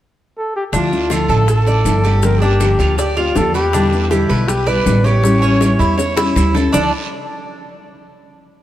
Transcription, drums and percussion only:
0.72 high bongo medium
0.72 long guiro medium
0.72 maracas medium
0.93 maracas soft
1.10 high bongo soft
1.10 short guiro medium
1.10 maracas medium
1.28 high bongo soft
1.28 short guiro medium
1.28 maracas soft
1.47 high bongo medium
1.47 long guiro medium
1.47 maracas medium
1.67 high bongo soft
1.67 maracas soft
1.84 high bongo soft
1.84 low bongo medium
1.84 short guiro medium
1.84 maracas medium
2.04 high bongo soft
2.04 short guiro medium
2.04 maracas soft
2.22 high bongo medium
2.22 long guiro medium
2.22 maracas medium
2.42 maracas soft
2.60 high bongo soft
2.60 short guiro medium
2.60 maracas medium
2.79 high bongo soft
2.79 short guiro medium
2.79 maracas soft
2.98 high bongo medium
2.98 long guiro medium
2.98 maracas medium
3.17 high bongo soft
3.17 maracas soft
3.35 high bongo soft
3.35 low bongo medium
3.35 short guiro medium
3.35 maracas medium
3.54 high bongo soft
3.54 short guiro medium
3.54 maracas soft
3.72 high bongo medium
3.72 long guiro medium
3.72 maracas medium
3.93 maracas soft
4.11 high bongo medium
4.11 short guiro medium
4.11 maracas medium
4.29 high bongo soft
4.29 short guiro medium
4.29 maracas soft
4.48 high bongo medium
4.48 long guiro medium
4.48 maracas medium
4.67 high bongo soft
4.67 maracas soft
4.85 high bongo soft
4.85 low bongo medium
4.85 short guiro medium
4.85 maracas medium
5.05 high bongo soft
5.05 short guiro medium
5.05 maracas soft
5.23 high bongo medium
5.23 long guiro medium
5.23 maracas medium
5.43 maracas soft
5.61 high bongo medium
5.61 short guiro medium
5.61 maracas medium
5.79 high bongo soft
5.79 short guiro medium
5.79 maracas soft
5.98 high bongo medium
5.98 long guiro medium
5.98 maracas medium
6.17 high bongo loud
6.17 maracas soft
6.36 low bongo medium
6.36 short guiro medium
6.36 maracas medium
6.54 low bongo medium
6.54 short guiro medium
6.54 maracas soft
6.73 low bongo medium
6.73 long guiro medium
6.73 maracas medium

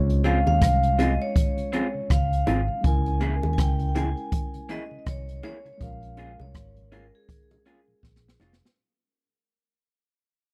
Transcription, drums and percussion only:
0.10 closed hi-hat medium
0.24 closed hi-hat medium
0.24 high bongo medium
0.47 high bongo medium
0.61 kick loud
0.61 cross-stick medium
0.61 closed hi-hat loud
0.83 closed hi-hat soft
0.99 closed hi-hat medium
0.99 high bongo medium
0.99 low bongo medium
1.36 kick loud
1.36 closed hi-hat medium
1.58 closed hi-hat soft
1.73 closed hi-hat medium
2.10 kick loud
2.10 cross-stick medium
2.10 closed hi-hat medium
2.33 closed hi-hat medium
2.47 closed hi-hat medium
2.47 high bongo medium
2.47 low bongo medium
2.84 kick loud
2.84 closed hi-hat medium
3.06 closed hi-hat medium
3.21 closed hi-hat medium
3.21 high bongo medium
3.43 closed hi-hat soft
3.43 high bongo medium
3.58 kick loud
3.58 cross-stick loud
3.58 closed hi-hat medium
3.79 closed hi-hat soft
3.95 closed hi-hat medium
3.95 high bongo medium
3.95 low bongo medium
4.17 closed hi-hat soft
4.32 kick loud
4.32 closed hi-hat loud
4.54 closed hi-hat soft
4.69 closed hi-hat medium
5.06 kick loud
5.06 cross-stick medium
5.06 closed hi-hat medium
5.29 closed hi-hat medium
5.43 closed hi-hat medium
5.43 high bongo medium
5.43 low bongo medium
5.66 closed hi-hat soft
5.81 kick loud
5.81 closed hi-hat medium
6.03 closed hi-hat soft
6.17 closed hi-hat medium
6.17 high bongo medium
6.40 high bongo medium
6.54 kick loud
6.54 cross-stick loud
6.54 closed hi-hat medium
6.76 closed hi-hat soft
6.92 closed hi-hat medium
6.92 high bongo medium
6.92 low bongo medium
7.29 kick loud
7.29 closed hi-hat loud
7.51 closed hi-hat soft
7.51 high bongo medium
7.66 closed hi-hat medium
8.03 kick medium
8.03 snare soft
8.16 snare medium
8.28 snare medium
8.40 snare medium
8.40 high bongo medium
8.40 low bongo medium
8.53 snare medium
8.65 snare medium

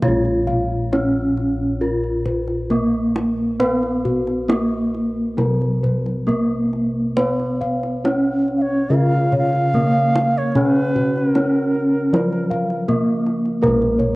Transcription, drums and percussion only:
0.02 kendang high medium
0.02 kendang low medium
0.25 kendang slap soft
0.47 kendang low medium
0.93 kendang slap soft
0.93 kendang high medium
1.37 kendang slap soft
1.81 kendang slap soft
2.04 kendang slap soft
2.26 kendang low medium
2.48 kendang slap soft
2.70 kendang low soft
3.16 kendang slap soft
3.16 kendang high medium
3.60 kendang low medium
3.83 kendang slap soft
4.05 kendang low medium
4.27 kendang slap soft
4.50 kendang slap soft
4.50 kendang high medium
4.95 kendang slap soft
5.38 kendang slap soft
5.38 kendang high soft
5.61 kendang slap soft
5.84 kendang low medium
6.06 kendang slap soft
6.28 kendang low medium
6.73 kendang slap soft
7.17 kendang high soft
7.17 kendang low medium
7.40 kendang slap soft
7.62 kendang low medium
7.83 kendang slap soft
8.05 kendang slap soft
8.05 kendang high medium
8.48 kendang slap soft
8.91 kendang slap soft
9.12 kendang slap soft
9.32 kendang low medium
9.53 kendang slap soft
9.74 kendang low medium
10.15 kendang slap soft
10.15 kendang high medium
10.55 kendang low medium
10.76 kendang slap soft
10.96 kendang low medium
11.16 kendang slap soft
11.35 kendang slap soft
11.35 kendang high medium
11.75 kendang slap soft
12.14 kendang slap soft
12.14 kendang high medium
12.33 kendang slap soft
12.51 kendang slap soft
12.51 kendang low medium
12.70 kendang slap soft
12.89 kendang low medium
13.26 kendang slap soft
13.45 kendang slap soft
13.63 kendang low medium
13.82 kendang slap soft
14.00 kendang slap soft
14.00 kendang low soft

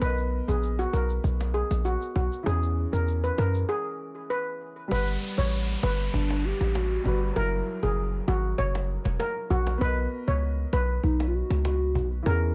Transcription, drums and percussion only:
0.01 cajon bass loud
0.01 shaker medium
0.18 cajon slap soft
0.18 shaker medium
0.32 cajon slap soft
0.48 cajon bass medium
0.48 shaker medium
0.63 cajon slap soft
0.63 shaker medium
0.79 cajon slap soft
0.79 shaker medium
0.93 cajon slap medium
0.93 shaker medium
1.09 cajon slap soft
1.09 shaker medium
1.24 cajon bass medium
1.24 shaker medium
1.40 cajon slap medium
1.40 shaker soft
1.55 cajon slap soft
1.71 cajon slap medium
1.71 shaker medium
1.85 cajon slap soft
1.85 shaker medium
2.01 cajon slap soft
2.01 shaker medium
2.16 cajon bass loud
2.32 cajon slap soft
2.32 shaker medium
2.46 cajon bass loud
2.46 shaker medium
2.63 cajon slap soft
2.63 shaker medium
2.77 cajon slap soft
2.93 cajon bass medium
2.93 shaker medium
3.08 cajon slap soft
3.08 shaker medium
3.24 cajon slap soft
3.24 shaker medium
3.38 cajon slap medium
3.38 shaker medium
3.54 cajon slap soft
3.54 shaker medium
4.91 cajon bass loud
5.08 cajon slap soft
5.22 cajon slap soft
5.38 cajon bass medium
5.53 cajon slap soft
5.69 cajon slap soft
5.83 cajon slap loud
5.99 cajon slap soft
6.14 cajon bass loud
6.30 cajon slap loud
6.45 cajon slap soft
6.61 cajon slap medium
6.75 cajon slap loud
6.91 cajon slap soft
7.05 cajon bass loud
7.22 cajon slap soft
7.36 cajon bass loud
7.53 cajon slap soft
7.67 cajon slap soft
7.83 cajon bass medium
7.98 cajon slap soft
8.14 cajon slap soft
8.28 cajon slap loud
8.44 cajon slap soft
8.59 cajon bass medium
8.75 cajon slap loud
8.89 cajon slap soft
9.05 cajon bass loud
9.05 cajon slap medium
9.20 cajon slap loud
9.36 cajon slap soft
9.50 cajon bass loud
9.67 cajon slap loud
9.81 cajon bass loud
9.97 cajon slap soft
10.12 cajon slap soft
10.28 cajon bass medium
10.42 cajon slap soft
10.59 cajon slap soft
10.73 cajon slap medium
10.89 cajon slap soft
11.03 cajon bass medium
11.20 cajon slap loud
11.34 cajon slap soft
11.51 cajon slap medium
11.65 cajon slap loud
11.81 cajon slap soft
11.95 cajon bass loud
12.12 cajon slap soft
12.26 cajon bass loud
12.42 cajon slap soft

